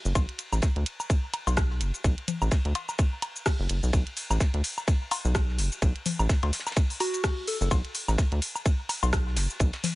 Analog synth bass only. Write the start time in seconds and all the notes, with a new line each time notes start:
0.05 F#1
0.15 B1
0.52 A1
0.76 D2
1.47 B1
1.81 F#1
2.04 B1
2.42 A1
2.65 D2
3.60 F#1
3.70 F#1
3.83 B1
3.93 B1
4.30 A1
4.54 D2
5.25 B1
5.58 F#1
5.82 B1
6.19 A1
6.43 D2
7.61 F#1
7.71 B1
8.08 A1
8.32 D2
9.03 B1
9.36 F#1
9.60 B1